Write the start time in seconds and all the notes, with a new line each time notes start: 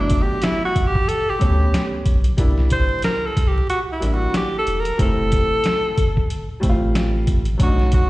Already playing: G1 F#3 A3 B3 D4
0.00 D4
0.10 kick, closed hi-hat
0.22 G4
0.42 E4, snare, closed hi-hat
0.65 F#4
0.76 A1, kick, closed hi-hat
0.87 G4
0.95 kick
1.08 A4, closed hi-hat
1.30 G4
1.38 D2 G3 A3 B3 C#4, kick, closed hi-hat
1.74 snare, closed hi-hat
2.06 B1, kick, closed hi-hat
2.24 closed hi-hat
2.37 C2 G3 A#3 D4 E4, kick, closed hi-hat
2.58 snare
2.70 C5, kick, closed hi-hat
3.02 A#4, snare, closed hi-hat
3.26 A4
3.37 C2, kick, closed hi-hat
3.48 G4
3.70 F#4, closed hi-hat
3.92 E4
4.00 A1 G3 A#3 D4 E4, closed hi-hat
4.14 F#4
4.34 G4, snare, closed hi-hat
4.58 A4
4.67 E1, closed hi-hat
4.80 A#4
4.85 closed hi-hat
4.97 F1 G3 A3 C4 E4, kick, closed hi-hat
5.02 A4
5.32 kick, closed hi-hat
5.64 snare, closed hi-hat
5.98 G1, kick, closed hi-hat
6.17 kick
6.30 closed hi-hat
6.60 A1 G3 A3 C4 E4, kick, closed hi-hat
6.69 F4
6.95 snare, closed hi-hat
7.27 kick, closed hi-hat
7.45 closed hi-hat
7.58 B1 F#3 A3 C#4 D4, kick, closed hi-hat
7.62 F#4
7.67 D#4
7.80 snare
7.92 F#4, kick, closed hi-hat